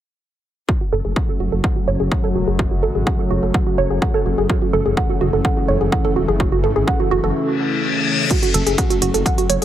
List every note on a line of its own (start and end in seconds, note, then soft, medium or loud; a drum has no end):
0.68 7.35 F#2 medium
0.68 8.27 C#3 medium
0.68 4.46 F#3 medium
0.68 7.35 F#3 medium
0.68 8.27 A3 medium
0.68 0.74 F#4 medium
0.68 kick loud
0.81 0.86 F#4 medium
0.93 1.01 F#1 medium
0.93 0.96 A4 medium
1.05 1.13 F#1 medium
1.05 1.10 G#4 medium
1.16 1.22 F#5 medium
1.16 kick loud
1.29 1.34 F#4 medium
1.40 1.49 F#1 medium
1.40 1.43 F#4 loud
1.52 1.60 F#1 medium
1.52 1.58 A4 medium
1.64 1.69 F#5 medium
1.64 kick loud
1.76 1.81 F#4 medium
1.88 1.96 F#1 medium
1.88 1.93 C#5 loud
2.00 2.08 F#1 medium
2.00 2.05 G#4 medium
2.12 2.17 F#5 medium
2.12 kick loud
2.24 2.29 A4 loud
2.35 2.44 E1 medium
2.35 2.41 F#4 medium
2.48 2.84 F#1 medium
2.48 2.55 G#4 medium
2.59 2.65 F#4 medium
2.59 kick loud
2.71 2.77 F#4 medium
2.83 2.91 G#1 medium
2.83 2.86 A4 medium
2.95 3.03 G#1 medium
2.95 3.00 G#4 medium
3.07 3.12 F#5 medium
3.07 kick loud
3.19 3.24 F#4 medium
3.31 3.39 F#1 medium
3.31 3.34 F#4 loud
3.43 3.51 F#1 medium
3.43 3.48 A4 medium
3.54 3.60 F#5 medium
3.54 kick loud
3.67 3.72 F#4 medium
3.78 3.87 F#1 medium
3.78 3.84 C#5 loud
3.90 3.98 F#1 medium
3.90 3.96 G#4 medium
4.02 4.07 F#5 medium
4.02 kick loud
4.14 4.19 A4 loud
4.26 4.34 F#1 medium
4.26 4.31 F#4 medium
4.38 4.46 F#1 medium
4.38 4.46 G#4 medium
4.49 8.27 E3 medium
4.49 4.55 F#4 medium
4.49 kick loud
4.62 4.67 F#4 medium
4.73 4.82 F#1 loud
4.73 4.77 A4 loud
4.86 4.94 F#1 medium
4.86 4.91 G#4 medium
4.97 5.03 F#5 medium
4.97 kick loud
5.09 5.15 F#4 medium
5.21 5.29 F#1 medium
5.21 5.24 F#4 loud
5.33 5.41 F#1 medium
5.33 5.38 A4 medium
5.45 5.50 F#5 medium
5.45 kick loud
5.57 5.62 F#4 medium
5.68 5.77 F#1 medium
5.68 5.74 C#5 loud
5.81 5.89 F#1 medium
5.81 5.86 G#4 medium
5.92 5.98 F#5 medium
5.92 kick loud
6.05 6.10 A4 loud
6.16 6.25 E1 medium
6.16 6.22 F#4 medium
6.28 6.65 F#1 medium
6.28 6.36 G#4 medium
6.40 6.45 F#4 medium
6.40 kick loud
6.52 6.57 F#4 medium
6.64 6.72 G#1 medium
6.64 6.67 A4 medium
6.76 6.84 G#1 medium
6.76 6.81 G#4 medium
6.87 6.93 F#5 medium
6.87 kick loud
7.00 7.05 F#4 medium
7.11 7.20 F#1 medium
7.11 7.15 F#4 loud
7.24 7.32 F#1 medium
7.24 7.29 A4 medium
7.35 reverse cymbal medium
8.30 9.65 F#2 medium
8.30 9.65 C#3 medium
8.30 9.65 F#3 medium
8.30 9.65 A3 medium
8.30 8.36 F#4 medium
8.30 kick loud
8.30 closed hi-hat medium
8.30 crash medium
8.43 8.48 F#4 medium
8.43 closed hi-hat soft
8.54 8.63 F#1 medium
8.54 8.58 A4 loud
8.54 closed hi-hat loud
8.66 8.75 F#1 medium
8.66 8.72 G#4 medium
8.66 closed hi-hat soft
8.78 8.84 F#5 medium
8.78 kick loud
8.78 closed hi-hat medium
8.90 8.96 F#4 medium
8.90 closed hi-hat soft
9.02 9.10 F#1 loud
9.02 9.05 F#4 loud
9.02 closed hi-hat medium
9.14 9.22 F#1 medium
9.14 9.19 A4 medium
9.14 closed hi-hat soft
9.26 9.31 F#5 medium
9.26 kick loud
9.26 closed hi-hat medium
9.38 9.43 F#4 medium
9.38 closed hi-hat soft
9.50 9.58 F#1 medium
9.50 9.55 C#5 loud
9.50 closed hi-hat loud
9.62 9.65 G#4 medium